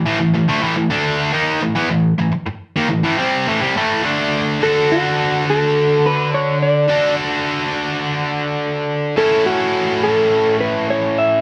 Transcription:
X:1
M:4/4
L:1/16
Q:1/4=105
K:Dlyd
V:1 name="Electric slide guitar"
z16 | z16 | A2 F4 A4 B2 c2 d2- | d2 z12 z2 |
A2 F4 A4 B2 c2 e2 |]
V:2 name="Distorted electric guitar" clef=bass
[A,,E,] [A,,E,] [A,,E,] [D,A,] [A,,E,] [A,,E,] [D,A,D]3 [^D,_B,^D]2 [A,,E,] [E,=B,] [A,,E,]2 [A,,E,] | z3 [^D,_B,] [A,,E,] [A,,E,] [=C,=G,=C]2 [A,,E,] [C,G,] [A,,E,A,]2 [=D,A,D]4 | [D,DFA]16 | [D,DFA]16 |
[A,,A,CEA]16 |]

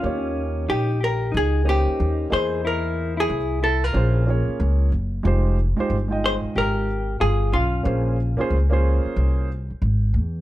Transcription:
X:1
M:4/4
L:1/16
Q:"Swing 16ths" 1/4=92
K:Bbdor
V:1 name="Hollow-body jazz guitar"
F4 G2 B2 A2 G4 c2 | B3 ^G3 =A B4- B z4 | z6 c2 B4 A2 F2- | F6 z8 z2 |]
V:2 name="Grand piano"
[B,DEGd]4- [B,DEGd] z4 z [B,DEGc]4 [B,=E^Gc^d]2- | [B,=E^Gc^d]4 z4 [B,_DFAc]2 [B,DFA_d]4 z2 | [A,EFGc]2 z [A,EFGc] z [A,EFeg]4- [A,EFeg] z6 | [B,DFAc]2 z [B,DFAc] z [B,DFAc]4- [B,DFAc] z6 |]
V:3 name="Clean electric guitar"
D4 E2 G2 E2 E4 ^G2 | =E3 E3 E F4- F z4 | z6 A2 G4 F2 D2- | D6 z8 z2 |]
V:4 name="Upright bass" clef=bass
E,,4 B,,,4 D,,3 z E,,2 =E,,2- | =E,,4 C,,4 B,,,3 z D,,2 _G,,,2 | F,,,3 z G,,,3 z A,,,4 G,,,2 _C,,2 | B,,,3 z D,,3 z C,,3 z A,,,2 =E,,2 |]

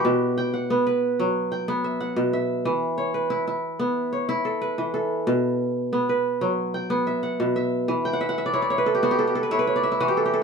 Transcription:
X:1
M:4/4
L:1/16
Q:1/4=92
K:Bm
V:1 name="Kora"
G/2 z3/2 g f2 B3 z g2 e f2 e2- | e z c B2 E3 z c2 A B2 A2- | A z4 B3 z g2 e f2 e2- | e g/2 f/2 e/2 f/2 e/2 d/2 c/2 d/2 c/2 B/2 A/2 G/2 F/2 G/2 A/2 G/2 A/2 B/2 c/2 B/2 c/2 d/2 e/2 E/2 F/2 G/2 A/2 G/2 A |]
V:2 name="Kora" clef=bass
B,,2 z2 B,2 z F,2 z B,2 z B,,2 z | E,2 z2 E2 z B,2 z E2 z E,2 z | B,,2 z2 B,2 z F,2 z B,2 z B,,2 z | E,2 z2 E2 z B,2 z E2 z E,2 z |]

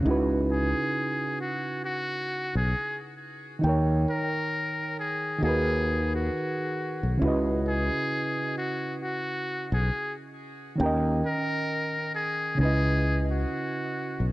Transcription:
X:1
M:4/4
L:1/16
Q:"Swing 16ths" 1/4=67
K:C#dor
V:1 name="Muted trumpet"
z2 G4 F2 F3 G2 z3 | z2 A4 G2 G3 F4- F | z2 G4 F2 F3 G2 z3 | z2 A4 G2 G3 F4- F |]
V:2 name="Reed electric piano"
[C,CDEFB]16 | [D,DAc=g]8 [D,DF^GAB]8 | [C,CEFBd]16 | [D,CAd=g]8 [C,CDEBd]8 |]
V:3 name="Fretless electric bass" clef=bass
C,,3 z8 B,,, z4 | D,,2 z6 D,,4 z3 B,,, | C,,3 z8 B,,, z4 | D,,2 z6 C,,4 z3 B,,, |]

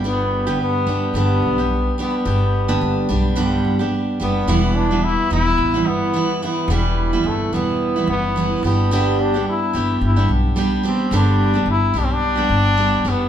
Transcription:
X:1
M:4/4
L:1/16
Q:"Swing 16ths" 1/4=108
K:Em
V:1 name="Steel-string acoustic guitar"
[G,B,DG]3 [G,,D,G,B,DG]3 [G,B,DG]2 [G,,D,G,B,DG]3 [G,B,DG]3 [G,B,DG]2 | [G,B,DG]3 [G,,D,G,B,DG]3 [G,B,DG]2 [G,,D,G,B,DG]3 [G,B,DG]3 [G,B,DG]2 | [E,,B,,E,G,B,E]3 [E,G,B,E]3 [E,G,B,E]3 [E,G,B,E]3 [E,G,B,E]2 [E,G,B,E]2 | [E,,B,,E,G,B,E]3 [E,G,B,E]3 [E,G,B,E]3 [E,G,B,E]3 [E,G,B,E]2 [G,B,DG]2 |
[G,,D,G,B,DG]3 [G,B,DG]3 [G,B,DG]3 [G,B,DG]3 [G,B,DG]2 [G,B,DG]2 | [G,,D,G,B,DG]3 [G,B,DG]3 [G,B,DG]3 [G,B,DG]3 [G,B,DG]2 [G,B,DG]2 |]
V:2 name="Trombone"
B,4 B,4 B,6 B,2- | B,8- B,2 z4 B,2- | B,2 D2 E2 E4 B,4 B,2 | G,4 A,2 B,4 B,4 B,2- |
B,2 D2 E4 E2 z4 C2 | D4 E2 D/2 C/2 D6- D B,2 |]
V:3 name="Upright bass" clef=bass
G,,,4- G,,, z G,,,2 G,,,2 B,,,4 z2 | G,,,4 G,,,2 B,,,4 G,,,4 F,,,2 | E,,,4- E,,, z E,,,2 A,,,2 G,,,4 z2 | E,,,4 G,,,2 E,,,4 F,,,4 G,,,2- |
G,,,4- G,,, z G,,,2 G,,,2 B,,,4 z2 | G,,,4 G,,,2 B,,,4 G,,,4 F,,,2 |]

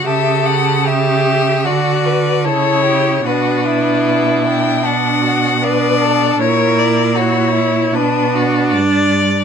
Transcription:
X:1
M:4/4
L:1/8
Q:1/4=76
K:Bm
V:1 name="Violin"
e f e2 d2 c2 | B3 g f2 d2 | c d c2 B2 z2 |]
V:2 name="Violin"
A2 G2 F B A G | F E3 D F B A | ^A2 F E D F d2 |]
V:3 name="Viola"
G2 G2 F2 E2 | D4 D2 D2 | E2 E2 D4 |]
V:4 name="Cello" clef=bass
C,4 D,2 C,2 | B,,8 | ^A,,4 B,,2 G,,2 |]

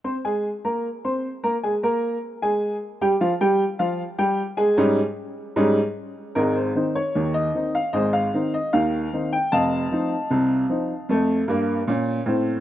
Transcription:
X:1
M:2/4
L:1/16
Q:1/4=76
K:Ab
V:1 name="Upright piano"
[Ccc'] [A,Aa]2 [B,Bb]2 [Ccc']2 [B,Bb] | [A,Aa] [B,Bb]3 [A,Aa]3 [G,Gg] | [F,Ff] [G,Gg]2 [F,Ff]2 [G,Gg]2 [A,Aa]- | [A,Aa] z6 z |
[EB] c2 d2 e2 f | [Ace] f2 e f3 g | [ef=a]8- | [ef=a]8 |]
V:2 name="Upright piano" clef=bass
z8 | z8 | z8 | [A,,G,DE]2 z2 [A,,G,DE]2 z2 |
[A,,,A,,]2 [E,CE]2 [E,,E,]2 [E,CE]2 | [A,,,A,,]2 [E,CE]2 [E,,E,]2 [E,CE]2 | [F,,,F,,]2 [F,CE]2 [C,,C,]2 [F,CE]2 | [F,,=A,]2 [G,,B,]2 [B,,D]2 [=A,,C]2 |]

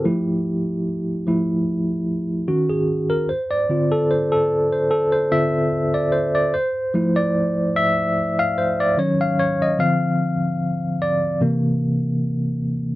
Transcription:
X:1
M:4/4
L:1/16
Q:"Swing 16ths" 1/4=74
K:Dm
V:1 name="Tine electric piano"
G z8 z3 _G _A2 B | c d2 A c A2 c A c e3 d c d | c3 d3 e3 f c d _d f d _e | f6 d2 z8 |]
V:2 name="Tine electric piano"
[F,A,E]6 [F,A,E]2 z4 [_E,_D]4 | z2 [D,CF]8 [D,CF]2 z4 | z2 [F,A,E]8- [F,A,E]2 [_E,_G,_D]2 z2 | [D,F,C]2 z6 [C,E,B,]6 z2 |]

